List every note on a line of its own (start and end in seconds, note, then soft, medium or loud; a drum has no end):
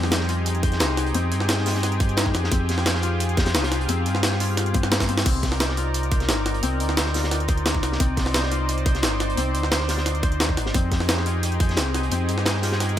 0.00 0.82 F2 loud
0.00 1.14 C4 loud
0.00 0.76 D#4 medium
0.00 2.49 D#4 medium
0.00 0.28 F4 medium
0.00 5.22 G4 medium
0.00 5.22 G#4 medium
0.00 0.11 C5 medium
0.00 snare soft
0.12 0.63 C5 medium
0.12 snare loud
0.12 closed hi-hat medium
0.20 snare medium
0.29 1.66 F4 medium
0.29 closed hi-hat medium
0.46 closed hi-hat medium
0.55 closed hi-hat soft
0.63 1.49 C5 medium
0.63 kick loud
0.63 closed hi-hat medium
0.72 snare soft
0.72 closed hi-hat soft
0.80 1.13 C2 loud
0.80 2.17 D#4 medium
0.80 snare loud
0.80 closed hi-hat medium
0.97 snare soft
0.97 closed hi-hat medium
1.06 closed hi-hat soft
1.14 1.33 F2 loud
1.14 2.51 C4 loud
1.14 closed hi-hat medium
1.32 2.33 G2 medium
1.32 closed hi-hat medium
1.40 snare soft
1.48 2.00 C5 medium
1.48 snare loud
1.48 closed hi-hat medium
1.58 snare soft
1.66 3.03 F4 medium
1.66 snare medium
1.66 closed hi-hat medium
1.66 open hi-hat medium
1.75 snare soft
1.83 snare soft
1.83 closed hi-hat medium
1.92 closed hi-hat soft
2.00 2.86 C5 medium
2.00 kick loud
2.00 closed hi-hat medium
2.09 closed hi-hat soft
2.17 3.54 D#4 medium
2.17 snare loud
2.17 closed hi-hat medium
2.26 kick medium
2.34 2.50 F2 loud
2.34 snare soft
2.34 closed hi-hat medium
2.44 snare medium
2.51 3.56 F2 loud
2.51 3.88 C4 loud
2.51 5.23 F4 medium
2.51 kick loud
2.51 closed hi-hat loud
2.51 closed hi-hat medium
2.69 snare soft
2.69 closed hi-hat medium
2.69 open hi-hat medium
2.78 snare soft
2.86 3.37 C5 medium
2.86 snare loud
2.86 closed hi-hat loud
2.86 closed hi-hat medium
2.95 snare medium
3.02 4.40 F4 medium
3.02 closed hi-hat medium
3.20 closed hi-hat medium
3.20 closed hi-hat loud
3.29 closed hi-hat soft
3.37 4.23 C5 medium
3.37 kick loud
3.37 snare loud
3.37 closed hi-hat medium
3.46 snare loud
3.46 closed hi-hat medium
3.46 closed hi-hat soft
3.54 3.87 C2 loud
3.54 6.25 D#4 medium
3.54 snare loud
3.54 closed hi-hat medium
3.63 snare loud
3.63 closed hi-hat medium
3.71 snare soft
3.71 closed hi-hat medium
3.81 closed hi-hat soft
3.88 4.07 F2 loud
3.88 4.74 C4 loud
3.88 closed hi-hat medium
3.88 closed hi-hat loud
4.06 4.83 G2 medium
4.06 closed hi-hat medium
4.15 snare soft
4.23 5.60 C5 medium
4.23 snare loud
4.23 closed hi-hat loud
4.23 closed hi-hat medium
4.32 snare medium
4.40 5.77 F4 medium
4.40 closed hi-hat medium
4.40 open hi-hat medium
4.57 snare soft
4.57 closed hi-hat loud
4.57 closed hi-hat medium
4.66 closed hi-hat soft
4.74 4.91 C4 loud
4.74 kick loud
4.74 closed hi-hat medium
4.83 5.25 G2 medium
4.83 snare medium
4.83 closed hi-hat soft
4.91 5.09 C4 loud
4.91 snare loud
4.91 closed hi-hat medium
4.91 closed hi-hat loud
5.00 kick medium
5.00 snare medium
5.09 5.26 C4 loud
5.09 closed hi-hat medium
5.18 snare loud
5.18 snare soft
5.26 6.30 C2 loud
5.26 6.62 C4 loud
5.26 10.70 D#4 medium
5.26 7.97 A#4 medium
5.26 10.70 D5 medium
5.26 kick loud
5.26 closed hi-hat medium
5.26 closed hi-hat loud
5.26 crash loud
5.43 kick medium
5.43 snare soft
5.43 closed hi-hat medium
5.43 open hi-hat medium
5.52 snare soft
5.60 6.11 C5 medium
5.60 snare loud
5.60 closed hi-hat loud
5.69 snare medium
5.77 7.14 F4 medium
5.77 closed hi-hat medium
5.94 closed hi-hat loud
5.94 closed hi-hat medium
6.03 closed hi-hat soft
6.12 6.97 C5 medium
6.12 kick loud
6.12 closed hi-hat medium
6.20 snare soft
6.20 closed hi-hat soft
6.29 6.62 G1 loud
6.29 7.65 D#4 medium
6.29 snare loud
6.29 closed hi-hat loud
6.29 closed hi-hat medium
6.46 snare soft
6.46 closed hi-hat medium
6.54 closed hi-hat soft
6.63 6.82 C2 loud
6.63 7.99 C4 loud
6.63 closed hi-hat loud
6.63 closed hi-hat medium
6.80 7.82 D2 medium
6.80 closed hi-hat medium
6.89 snare soft
6.97 7.48 C5 medium
6.97 snare loud
6.97 closed hi-hat medium
6.97 closed hi-hat loud
7.06 snare medium
7.14 8.51 F4 medium
7.14 snare medium
7.14 closed hi-hat medium
7.14 open hi-hat medium
7.24 snare medium
7.31 snare medium
7.31 closed hi-hat loud
7.31 closed hi-hat medium
7.40 closed hi-hat soft
7.48 8.34 C5 medium
7.48 kick loud
7.48 closed hi-hat medium
7.58 closed hi-hat soft
7.66 9.03 D#4 medium
7.66 snare loud
7.66 closed hi-hat medium
7.75 kick medium
7.83 7.98 C2 loud
7.83 snare soft
7.83 closed hi-hat medium
7.92 snare medium
8.00 9.04 C2 loud
8.00 9.37 C4 loud
8.00 10.72 C5 medium
8.00 kick loud
8.00 closed hi-hat medium
8.17 kick medium
8.17 snare medium
8.17 closed hi-hat medium
8.17 open hi-hat medium
8.26 snare soft
8.34 8.86 C5 medium
8.34 snare loud
8.34 closed hi-hat medium
8.34 closed hi-hat loud
8.43 snare medium
8.51 9.89 F4 medium
8.51 closed hi-hat medium
8.69 closed hi-hat medium
8.78 closed hi-hat soft
8.86 9.71 C5 medium
8.86 kick loud
8.86 closed hi-hat medium
8.95 snare soft
8.95 closed hi-hat soft
9.03 9.36 G1 loud
9.03 10.40 D#4 medium
9.03 snare loud
9.03 closed hi-hat loud
9.03 closed hi-hat medium
9.20 snare soft
9.20 closed hi-hat medium
9.30 closed hi-hat soft
9.37 9.56 C2 loud
9.37 10.74 C4 loud
9.37 closed hi-hat medium
9.54 10.42 D2 medium
9.54 closed hi-hat medium
9.63 snare soft
9.71 10.23 C5 medium
9.71 snare loud
9.71 closed hi-hat medium
9.80 snare medium
9.88 11.26 F4 medium
9.88 snare medium
9.88 closed hi-hat medium
9.88 open hi-hat medium
9.97 snare medium
10.06 snare soft
10.06 closed hi-hat medium
10.15 closed hi-hat soft
10.23 11.09 C5 medium
10.23 kick loud
10.23 closed hi-hat medium
10.32 closed hi-hat soft
10.40 10.59 D#2 medium
10.40 12.99 D#4 medium
10.40 snare loud
10.40 closed hi-hat medium
10.49 kick medium
10.57 10.73 G1 loud
10.57 snare soft
10.57 closed hi-hat medium
10.66 snare medium
10.74 11.79 F2 loud
10.74 11.77 C4 loud
10.74 12.99 D#4 medium
10.74 12.99 G4 medium
10.74 12.99 G#4 medium
10.74 kick loud
10.74 closed hi-hat medium
10.74 closed hi-hat loud
10.92 kick medium
10.92 snare medium
10.92 closed hi-hat medium
10.92 open hi-hat medium
11.00 snare soft
11.09 11.60 C5 medium
11.09 snare loud
11.09 closed hi-hat medium
11.09 closed hi-hat loud
11.17 snare medium
11.26 12.63 F4 medium
11.26 closed hi-hat medium
11.43 closed hi-hat medium
11.43 closed hi-hat loud
11.52 closed hi-hat soft
11.60 12.45 C5 medium
11.60 kick loud
11.60 closed hi-hat medium
11.69 snare soft
11.69 closed hi-hat soft
11.77 12.10 C2 loud
11.77 12.11 C4 medium
11.77 snare loud
11.77 closed hi-hat medium
11.94 snare soft
11.94 closed hi-hat medium
12.03 closed hi-hat soft
12.11 12.30 F2 loud
12.11 12.99 C4 loud
12.11 closed hi-hat medium
12.29 12.99 G2 medium
12.29 closed hi-hat medium
12.38 snare soft
12.46 12.97 C5 medium
12.46 snare loud
12.46 closed hi-hat medium
12.54 snare soft
12.62 12.99 F4 medium
12.62 snare soft
12.62 closed hi-hat medium
12.62 open hi-hat medium
12.72 snare medium
12.80 snare soft
12.80 closed hi-hat medium
12.89 closed hi-hat soft